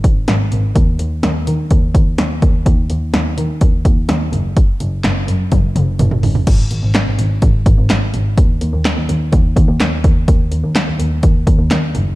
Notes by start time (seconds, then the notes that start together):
0.04 G#1, kick, closed hi-hat
0.28 G#1, snare, closed hi-hat
0.52 G#1, closed hi-hat
0.76 D#2, kick, closed hi-hat
0.99 D#2, closed hi-hat
1.23 D#2, snare, closed hi-hat
1.47 D#3, closed hi-hat
1.71 D#2, kick, closed hi-hat
1.95 D#2, kick, closed hi-hat
2.18 D#2, snare, closed hi-hat
2.42 D#2, kick, closed hi-hat
2.66 D#2, kick, closed hi-hat
2.90 D#2, closed hi-hat
3.14 D#2, snare, closed hi-hat
3.38 D#3, closed hi-hat
3.61 D#2, kick, closed hi-hat
3.85 D#2, kick, closed hi-hat
4.09 D#2, snare, closed hi-hat
4.33 F#1, closed hi-hat
4.57 kick, closed hi-hat
4.80 F#1, closed hi-hat
5.04 F#1, snare, clap, closed hi-hat
5.28 F#2, closed hi-hat
5.52 F#1, kick, closed hi-hat, high tom
5.76 F#1, closed hi-hat, mid tom
5.99 F#1, closed hi-hat, mid tom
6.11 mid tom
6.23 F#1, floor tom, open hi-hat
6.35 floor tom
6.47 G#1, kick, closed hi-hat, crash
6.71 G#1, closed hi-hat
6.83 G#1
6.95 snare, clap, closed hi-hat
7.07 G#1
7.19 G#1, closed hi-hat
7.42 G#1, kick, closed hi-hat
7.66 G#1, kick, closed hi-hat
7.78 G#1
7.90 G#1, snare, clap, closed hi-hat
8.14 G#1, closed hi-hat
8.38 D#2, kick, closed hi-hat
8.61 D#2, closed hi-hat
8.73 D#2
8.85 snare, clap, closed hi-hat
8.97 D#2
9.09 D#2, closed hi-hat
9.33 D#2, kick, closed hi-hat
9.56 D#2, kick, closed hi-hat
9.68 D#2
9.80 D#2, snare, clap, closed hi-hat
10.04 D#2, kick, closed hi-hat
10.28 D#2, kick, closed hi-hat
10.52 D#2, closed hi-hat
10.64 D#2
10.75 snare, clap, closed hi-hat
10.88 D#2
10.99 D#2, closed hi-hat
11.23 D#2, kick, closed hi-hat
11.47 D#2, kick, closed hi-hat
11.59 D#2
11.71 D#2, snare, clap, closed hi-hat
11.95 F#1, closed hi-hat